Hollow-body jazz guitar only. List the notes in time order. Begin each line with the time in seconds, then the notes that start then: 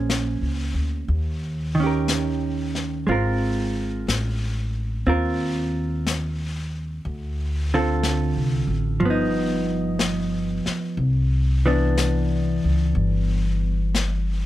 Already playing: A#3 C#4 G#4 C5
1.75 D#3
1.80 C#4 G4
1.86 A#4
3.07 G#3 C4 F4
3.11 A#4
5.07 C4 F4 A#4
7.74 D3 C4 F4 A4
9.00 F3
9.05 B3
9.10 D#4
11.66 E3 B3 D4